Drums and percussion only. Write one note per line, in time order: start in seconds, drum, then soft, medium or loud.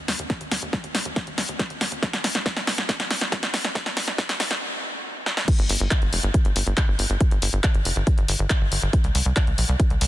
0.08 snare medium
0.08 open hi-hat loud
0.19 closed hi-hat soft
0.30 kick loud
0.30 snare medium
0.30 closed hi-hat medium
0.41 closed hi-hat medium
0.52 snare medium
0.52 open hi-hat loud
0.62 closed hi-hat medium
0.73 kick loud
0.73 snare medium
0.84 closed hi-hat medium
0.95 snare medium
0.95 open hi-hat loud
1.05 closed hi-hat medium
1.16 kick loud
1.16 snare medium
1.16 closed hi-hat medium
1.27 closed hi-hat soft
1.38 snare medium
1.38 open hi-hat loud
1.49 closed hi-hat medium
1.59 kick loud
1.59 snare medium
1.59 closed hi-hat medium
1.70 closed hi-hat medium
1.81 snare medium
1.81 open hi-hat loud
1.92 closed hi-hat medium
2.03 kick loud
2.03 snare medium
2.03 closed hi-hat medium
2.13 snare medium
2.13 closed hi-hat medium
2.24 snare medium
2.24 open hi-hat loud
2.35 snare medium
2.46 kick loud
2.46 snare loud
2.57 snare medium
2.57 closed hi-hat medium
2.67 snare loud
2.67 open hi-hat loud
2.78 snare medium
2.78 closed hi-hat medium
2.89 kick loud
2.89 snare loud
2.89 closed hi-hat medium
3.00 snare medium
3.00 closed hi-hat medium
3.11 snare loud
3.11 open hi-hat loud
3.21 snare medium
3.21 closed hi-hat medium
3.32 kick loud
3.32 snare medium
3.32 closed hi-hat medium
3.43 snare medium
3.43 closed hi-hat medium
3.54 snare loud
3.54 open hi-hat loud
3.65 snare medium
3.65 closed hi-hat medium
3.75 kick loud
3.75 snare loud
3.75 closed hi-hat medium
3.86 snare medium
3.86 closed hi-hat medium
3.97 snare loud
3.97 open hi-hat loud
4.08 snare medium
4.08 closed hi-hat medium
4.18 kick loud
4.18 snare loud
4.29 snare loud
4.29 closed hi-hat medium
4.40 snare loud
4.40 open hi-hat loud
4.51 snare medium
5.26 snare medium
5.37 snare medium
5.48 kick loud
5.48 closed hi-hat loud
5.48 crash loud
5.59 closed hi-hat soft
5.69 open hi-hat loud
5.80 closed hi-hat soft
5.91 kick loud
5.91 clap loud
5.91 closed hi-hat loud
6.02 closed hi-hat soft
6.13 open hi-hat loud
6.23 closed hi-hat soft
6.34 kick loud
6.34 closed hi-hat loud
6.45 closed hi-hat soft
6.56 open hi-hat loud
6.67 closed hi-hat soft
6.77 kick loud
6.77 clap loud
6.77 closed hi-hat medium
6.99 open hi-hat loud
7.10 closed hi-hat soft
7.21 kick loud
7.21 closed hi-hat medium
7.31 closed hi-hat soft
7.42 open hi-hat loud
7.53 closed hi-hat soft
7.64 kick loud
7.64 clap loud
7.64 closed hi-hat loud
7.75 closed hi-hat soft
7.85 open hi-hat loud
7.96 closed hi-hat soft
8.07 kick loud
8.07 closed hi-hat medium
8.18 closed hi-hat soft
8.28 open hi-hat loud
8.39 closed hi-hat soft
8.50 kick loud
8.50 clap loud
8.50 closed hi-hat loud
8.72 open hi-hat loud
8.82 closed hi-hat soft
8.93 kick loud
8.93 closed hi-hat medium
9.04 closed hi-hat soft
9.15 open hi-hat loud
9.26 closed hi-hat soft
9.36 kick loud
9.36 clap loud
9.36 closed hi-hat loud
9.47 closed hi-hat soft
9.58 open hi-hat loud
9.69 closed hi-hat soft
9.80 kick loud
9.80 closed hi-hat medium
9.90 closed hi-hat soft
10.01 open hi-hat loud